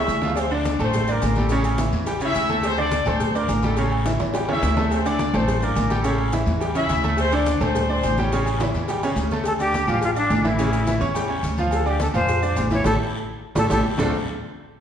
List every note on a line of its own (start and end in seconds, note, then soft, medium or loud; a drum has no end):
0.00 0.18 C#4 medium
0.00 0.32 E4 medium
0.00 0.18 C#5 medium
0.00 0.32 E5 loud
0.00 0.19 C#6 medium
0.07 0.74 D2 loud
0.07 cowbell medium
0.07 high conga soft
0.07 low timbale medium
0.07 low agogo medium
0.07 short guiro medium
0.07 maracas medium
0.22 0.35 F3 medium
0.22 0.35 F4 medium
0.22 0.35 F5 medium
0.22 low bongo medium
0.22 high conga medium
0.22 short guiro medium
0.22 maracas soft
0.27 low timbale medium
0.35 0.52 C4 medium
0.35 0.38 D5 medium
0.35 cowbell loud
0.35 high conga soft
0.35 low agogo loud
0.35 long guiro medium
0.35 maracas medium
0.39 0.52 C5 medium
0.51 0.74 D3 loud
0.51 0.75 D4 loud
0.51 0.79 D4 medium
0.51 0.75 D5 medium
0.51 0.79 D5 medium
0.51 cowbell medium
0.51 high conga soft
0.51 low agogo medium
0.65 cowbell medium
0.65 high conga medium
0.65 short guiro medium
0.65 maracas medium
0.79 1.19 A1 loud
0.79 1.03 A3 medium
0.79 1.09 C4 medium
0.79 1.03 A4 medium
0.79 1.10 C5 loud
0.79 1.03 A5 medium
0.79 high conga soft
0.79 low conga medium
0.79 low agogo loud
0.79 short guiro medium
0.79 maracas soft
0.93 cowbell loud
0.93 high conga soft
0.93 low conga medium
0.93 low agogo medium
0.93 long guiro medium
0.93 maracas medium
1.07 1.38 A#3 medium
1.07 1.32 D4 medium
1.07 1.38 A#4 loud
1.07 1.32 D5 medium
1.07 1.32 D6 medium
1.07 high conga soft
1.07 maracas medium
1.22 1.88 A1 medium
1.22 cowbell medium
1.22 high conga medium
1.22 low timbale medium
1.22 low agogo loud
1.22 short guiro medium
1.22 maracas medium
1.36 1.48 G3 medium
1.36 1.66 A3 medium
1.36 1.49 G4 medium
1.36 1.66 A4 medium
1.36 1.49 G5 medium
1.36 cowbell medium
1.36 high conga medium
1.36 short guiro medium
1.36 maracas soft
1.49 1.75 C#3 loud
1.49 1.75 C#4 loud
1.49 1.75 C#5 medium
1.49 cowbell loud
1.49 high conga soft
1.49 low agogo loud
1.49 long guiro medium
1.49 maracas medium
1.64 high conga soft
1.64 low agogo loud
1.64 maracas medium
1.78 2.02 E3 medium
1.78 2.03 E4 medium
1.78 2.03 E5 medium
1.78 cowbell medium
1.78 high conga loud
1.78 low agogo medium
1.78 short guiro medium
1.78 maracas medium
1.92 2.32 E2 medium
1.92 cowbell medium
1.92 short guiro medium
1.92 maracas soft
2.06 2.19 G3 medium
2.06 2.19 G4 medium
2.06 2.19 G5 medium
2.06 cowbell loud
2.06 high conga soft
2.06 low agogo loud
2.06 long guiro medium
2.06 maracas medium
2.21 2.45 C#3 medium
2.21 2.45 C#4 medium
2.21 2.62 E4 loud
2.21 2.45 C#5 medium
2.21 high conga soft
2.21 low agogo loud
2.21 maracas medium
2.25 2.63 E5 loud
2.34 3.01 D2 medium
2.34 cowbell medium
2.34 high conga soft
2.34 low agogo medium
2.34 short guiro medium
2.34 maracas medium
2.49 2.73 A3 medium
2.49 2.73 A4 medium
2.49 2.73 A5 medium
2.49 high conga medium
2.49 short guiro medium
2.49 maracas soft
2.63 2.79 C4 medium
2.63 2.79 C5 loud
2.63 cowbell loud
2.63 high conga soft
2.63 low agogo loud
2.63 long guiro medium
2.63 maracas medium
2.77 3.01 D3 medium
2.77 3.02 D4 medium
2.77 3.06 D4 medium
2.77 3.02 D5 loud
2.77 cowbell medium
2.77 high conga soft
2.77 low agogo loud
2.81 3.06 D5 loud
2.91 cowbell medium
2.91 high conga medium
2.91 short guiro medium
2.91 maracas medium
3.05 3.46 D2 loud
3.05 3.30 A3 medium
3.05 3.30 A4 medium
3.05 3.36 C5 medium
3.05 3.30 A5 medium
3.05 high conga soft
3.05 low conga medium
3.05 low agogo loud
3.05 short guiro medium
3.05 maracas soft
3.09 3.37 C4 medium
3.20 cowbell loud
3.20 high conga soft
3.20 low conga medium
3.20 low agogo medium
3.20 long guiro medium
3.20 maracas medium
3.34 3.65 A#3 medium
3.34 3.58 D4 medium
3.34 3.64 A#4 medium
3.34 3.59 D5 medium
3.34 3.59 D6 medium
3.34 high conga soft
3.34 maracas medium
3.48 4.15 A1 loud
3.48 cowbell medium
3.48 high conga medium
3.48 low agogo loud
3.48 short guiro medium
3.48 maracas medium
3.62 3.75 G3 medium
3.62 3.91 A3 medium
3.62 3.76 G4 medium
3.62 3.91 A4 medium
3.62 3.75 G5 medium
3.62 cowbell medium
3.62 high conga medium
3.62 short guiro medium
3.62 maracas soft
3.76 4.01 C#3 medium
3.76 4.01 C#4 medium
3.76 4.01 C#5 medium
3.76 cowbell loud
3.76 high conga soft
3.76 low agogo loud
3.76 long guiro medium
3.76 maracas medium
3.91 high conga soft
3.91 low agogo loud
4.06 4.29 E3 medium
4.06 4.30 E4 medium
4.06 4.30 E5 medium
4.06 cowbell medium
4.06 high bongo medium
4.06 high conga medium
4.06 low agogo medium
4.06 short guiro medium
4.06 maracas medium
4.20 4.60 E2 medium
4.20 cowbell medium
4.20 high timbale medium
4.20 short guiro medium
4.20 maracas soft
4.34 4.46 G3 medium
4.34 4.47 G4 medium
4.34 4.47 G5 medium
4.34 cowbell loud
4.34 high bongo loud
4.34 high conga soft
4.34 high timbale medium
4.34 low agogo medium
4.34 long guiro medium
4.34 maracas medium
4.49 4.72 C#3 medium
4.49 4.72 C#4 medium
4.49 4.90 E4 medium
4.49 4.72 C#5 medium
4.49 4.90 E5 loud
4.49 low bongo medium
4.49 high conga soft
4.49 low timbale loud
4.49 low agogo medium
4.62 5.28 D2 loud
4.62 cowbell medium
4.62 low bongo loud
4.62 low timbale medium
4.62 low agogo medium
4.62 short guiro medium
4.62 maracas medium
4.76 5.00 A3 medium
4.76 5.00 A4 medium
4.76 5.00 A5 medium
4.76 low bongo loud
4.76 high conga medium
4.76 low timbale medium
4.76 short guiro medium
4.76 maracas soft
4.91 5.06 C4 medium
4.91 5.06 C5 loud
4.91 cowbell loud
4.91 high conga soft
4.91 low agogo loud
4.91 long guiro medium
4.91 maracas medium
5.05 5.29 D3 medium
5.05 5.29 D4 medium
5.05 5.35 D4 medium
5.05 5.29 D5 loud
5.05 5.35 D5 loud
5.05 cowbell medium
5.05 high conga soft
5.05 low agogo loud
5.05 maracas medium
5.19 cowbell medium
5.19 high conga medium
5.19 short guiro medium
5.19 maracas medium
5.33 5.73 A1 loud
5.33 5.57 A3 medium
5.33 5.63 C4 medium
5.33 5.57 A4 medium
5.33 5.63 C5 loud
5.33 5.57 A5 medium
5.33 high conga soft
5.33 low conga medium
5.33 low agogo loud
5.33 short guiro medium
5.33 maracas soft
5.48 cowbell loud
5.48 high conga soft
5.48 low conga medium
5.48 low agogo medium
5.48 long guiro medium
5.48 maracas medium
5.62 5.91 A#3 medium
5.62 5.86 D4 medium
5.62 5.91 A#4 medium
5.62 5.86 D5 medium
5.62 5.86 D6 medium
5.62 high conga soft
5.62 maracas medium
5.76 6.42 A1 medium
5.76 cowbell medium
5.76 high conga medium
5.76 low agogo loud
5.76 short guiro medium
5.76 maracas medium
5.90 6.02 G3 medium
5.90 6.19 A3 medium
5.90 6.02 G4 medium
5.90 6.19 A4 medium
5.90 6.03 G5 medium
5.90 cowbell medium
5.90 high conga medium
5.90 short guiro medium
5.90 maracas soft
6.04 6.28 C#3 medium
6.04 6.28 C#4 loud
6.04 6.28 C#5 medium
6.04 cowbell loud
6.04 low agogo loud
6.04 long guiro medium
6.04 maracas medium
6.18 high conga soft
6.18 low agogo loud
6.32 6.56 E3 medium
6.32 6.57 E4 medium
6.32 6.57 E5 medium
6.32 cowbell medium
6.32 high conga medium
6.32 low agogo medium
6.32 short guiro medium
6.32 maracas medium
6.46 6.87 E2 loud
6.46 cowbell medium
6.46 short guiro medium
6.46 maracas soft
6.60 6.73 G3 medium
6.60 6.73 G4 medium
6.60 6.73 G5 medium
6.60 cowbell loud
6.60 high conga soft
6.60 low agogo loud
6.60 long guiro medium
6.60 maracas medium
6.75 6.98 C#3 medium
6.75 6.99 C#4 medium
6.75 7.16 E4 medium
6.75 6.99 C#5 medium
6.75 7.16 E5 loud
6.75 high conga soft
6.75 low agogo loud
6.75 maracas medium
6.89 7.56 D2 loud
6.89 cowbell medium
6.89 low timbale medium
6.89 low agogo loud
6.89 short guiro medium
6.89 maracas medium
7.03 7.27 A3 medium
7.03 7.27 A4 medium
7.03 7.28 A5 medium
7.03 high conga medium
7.03 short guiro medium
7.03 maracas soft
7.17 7.33 C4 medium
7.17 7.34 C5 loud
7.17 cowbell loud
7.17 high conga soft
7.17 low agogo loud
7.17 long guiro medium
7.17 maracas medium
7.32 7.56 D3 loud
7.32 7.56 D4 loud
7.32 7.61 D4 medium
7.32 7.56 D5 medium
7.32 7.62 D5 medium
7.32 cowbell medium
7.32 high conga soft
7.32 low agogo medium
7.32 maracas medium
7.46 cowbell medium
7.46 high conga medium
7.46 short guiro medium
7.46 maracas medium
7.60 8.00 D2 loud
7.60 7.84 A3 medium
7.60 7.90 C4 medium
7.60 7.84 A4 medium
7.60 7.90 C5 loud
7.60 7.84 A5 medium
7.60 high conga soft
7.60 low conga medium
7.60 low agogo loud
7.60 short guiro medium
7.60 maracas soft
7.75 cowbell medium
7.75 high conga soft
7.75 low conga medium
7.75 low agogo medium
7.75 long guiro medium
7.75 maracas medium
7.89 8.16 C4 medium
7.89 8.13 D4 medium
7.89 8.17 C5 medium
7.89 8.13 D5 medium
7.89 8.13 D6 medium
7.89 high conga soft
8.03 8.69 A1 loud
8.03 cowbell medium
8.03 high conga medium
8.03 low agogo loud
8.03 short guiro medium
8.03 maracas medium
8.18 8.30 G3 medium
8.18 8.45 C#4 medium
8.18 8.30 G4 medium
8.18 8.45 C#5 medium
8.18 8.30 G5 medium
8.18 cowbell medium
8.18 high conga medium
8.18 short guiro medium
8.18 maracas soft
8.32 8.55 C#3 medium
8.32 8.56 C#4 medium
8.32 8.56 C#5 medium
8.32 cowbell loud
8.32 high conga soft
8.32 low agogo medium
8.32 long guiro medium
8.32 maracas medium
8.46 high conga soft
8.46 low agogo loud
8.46 maracas medium
8.60 8.84 E3 medium
8.60 8.84 E4 medium
8.60 8.84 E5 medium
8.60 cowbell medium
8.60 high conga medium
8.60 high timbale loud
8.60 low agogo medium
8.60 short guiro medium
8.60 maracas medium
8.74 9.14 E2 loud
8.74 cowbell medium
8.74 short guiro medium
8.74 maracas soft
8.88 9.01 G3 medium
8.88 9.01 G4 medium
8.88 9.01 G5 medium
8.88 cowbell loud
8.88 high conga soft
8.88 low agogo loud
8.88 long guiro medium
8.88 maracas medium
9.03 9.26 C#3 medium
9.03 9.27 C#4 medium
9.03 9.27 C#5 medium
9.03 high conga soft
9.03 low timbale loud
9.03 low agogo loud
9.03 maracas medium
9.16 9.82 D2 loud
9.16 cowbell medium
9.16 high conga soft
9.16 low agogo medium
9.16 short guiro medium
9.16 maracas medium
9.31 9.43 A3 medium
9.31 9.44 A4 medium
9.31 9.44 A5 medium
9.31 high conga medium
9.31 low timbale medium
9.31 short guiro medium
9.31 maracas soft
9.44 9.53 A4 loud
9.44 cowbell loud
9.44 high conga soft
9.44 low agogo loud
9.44 long guiro medium
9.44 maracas medium
9.59 9.83 D4 medium
9.59 10.00 G4 loud
9.59 9.83 D5 medium
9.59 9.83 D6 medium
9.59 cowbell medium
9.59 high conga soft
9.59 low agogo medium
9.59 maracas medium
9.73 cowbell medium
9.73 high conga medium
9.73 short guiro medium
9.73 maracas medium
9.87 10.27 A1 medium
9.87 10.11 F3 medium
9.87 10.11 F4 medium
9.87 10.11 F5 medium
9.87 high conga soft
9.87 low conga medium
9.87 low agogo loud
9.87 short guiro medium
9.87 maracas soft
10.01 10.10 F4 loud
10.01 cowbell loud
10.01 high conga soft
10.01 low agogo medium
10.01 long guiro medium
10.01 maracas medium
10.16 10.39 D4 medium
10.16 10.49 D4 loud
10.16 10.39 D5 medium
10.16 10.40 D6 medium
10.16 high conga soft
10.16 maracas medium
10.30 10.96 A1 loud
10.30 cowbell medium
10.30 high conga medium
10.30 low timbale medium
10.30 low agogo loud
10.30 short guiro medium
10.30 maracas medium
10.44 10.56 E3 medium
10.44 10.56 E4 medium
10.44 11.02 E4 medium
10.44 10.56 E5 medium
10.44 cowbell medium
10.44 high conga medium
10.44 short guiro medium
10.44 maracas soft
10.58 10.82 C#3 medium
10.58 10.82 C#4 loud
10.58 10.82 C#5 medium
10.58 cowbell loud
10.58 low agogo medium
10.58 maracas medium
10.73 high conga soft
10.73 low agogo loud
10.73 maracas medium
10.87 10.98 E3 medium
10.87 10.99 E4 medium
10.87 10.99 E5 medium
10.87 cowbell medium
10.87 high conga medium
10.87 low agogo medium
10.87 short guiro medium
10.87 maracas medium
11.00 11.41 E2 loud
11.00 11.12 C#4 medium
11.00 11.13 C#5 medium
11.00 11.12 C#6 medium
11.00 cowbell medium
11.00 short guiro medium
11.00 maracas soft
11.15 11.27 G3 medium
11.15 11.27 G4 medium
11.15 11.27 G5 medium
11.15 cowbell loud
11.15 high conga soft
11.15 low agogo loud
11.15 long guiro medium
11.15 maracas medium
11.29 11.53 C#4 medium
11.29 11.53 C#5 medium
11.29 11.53 C#6 medium
11.29 high conga soft
11.29 low agogo loud
11.43 12.09 D2 loud
11.43 cowbell medium
11.43 high conga soft
11.43 low agogo medium
11.43 short guiro medium
11.43 maracas medium
11.57 11.81 F3 medium
11.57 11.82 F4 medium
11.57 11.82 F5 medium
11.57 high conga medium
11.57 short guiro medium
11.57 maracas soft
11.71 11.86 A4 medium
11.71 cowbell loud
11.71 high conga soft
11.71 low agogo loud
11.71 long guiro medium
11.71 maracas medium
11.86 12.09 D4 medium
11.86 12.00 G4 medium
11.86 12.09 D5 medium
11.86 12.09 D6 medium
11.86 cowbell medium
11.86 high conga soft
11.86 low agogo medium
12.00 12.08 A4 medium
12.00 cowbell medium
12.00 high conga loud
12.00 short guiro medium
12.00 maracas medium
12.14 12.54 F2 loud
12.14 12.37 F3 medium
12.14 12.37 F4 medium
12.14 12.67 C5 loud
12.14 12.38 F5 medium
12.14 high conga soft
12.14 low conga medium
12.14 low agogo loud
12.14 short guiro medium
12.14 maracas soft
12.28 cowbell loud
12.28 high conga soft
12.28 low conga medium
12.28 low agogo medium
12.28 maracas medium
12.42 12.66 D4 medium
12.42 12.66 D5 medium
12.42 12.66 D6 medium
12.42 high conga soft
12.42 maracas medium
12.56 12.83 A1 loud
12.56 cowbell medium
12.56 high conga medium
12.56 low timbale medium
12.56 low agogo loud
12.56 short guiro medium
12.56 maracas medium
12.71 12.83 E3 medium
12.71 12.83 E4 medium
12.71 12.85 C#5 loud
12.71 12.83 E5 medium
12.71 cowbell medium
12.71 high conga medium
12.71 short guiro medium
12.71 maracas soft
12.84 12.96 A1 loud
12.84 12.94 E4 loud
12.84 12.95 G4 loud
12.84 12.95 A4 loud
12.84 cowbell loud
12.84 high conga medium
12.84 high timbale loud
12.84 long guiro loud
12.84 maracas loud
13.55 13.66 A1 loud
13.55 13.66 E4 medium
13.55 13.66 G4 medium
13.55 13.66 A4 medium
13.55 13.66 A4 loud
13.55 cowbell loud
13.55 high conga loud
13.55 high timbale loud
13.55 long guiro loud
13.55 maracas loud
13.70 13.81 A1 loud
13.70 13.80 E4 loud
13.70 13.79 G4 loud
13.70 13.79 A4 loud
13.70 13.80 A4 medium
13.70 cowbell loud
13.70 high conga medium
13.70 high timbale loud
13.70 long guiro loud
13.70 maracas loud
13.98 14.12 D2 loud
13.98 14.12 D3 loud
13.98 14.12 A3 medium
13.98 14.12 C4 medium
13.98 14.12 D4 medium
13.98 14.12 F4 medium
13.98 14.12 A4 loud
13.98 low bongo loud
13.98 low conga medium
13.98 low timbale loud
13.98 long guiro loud
13.98 maracas loud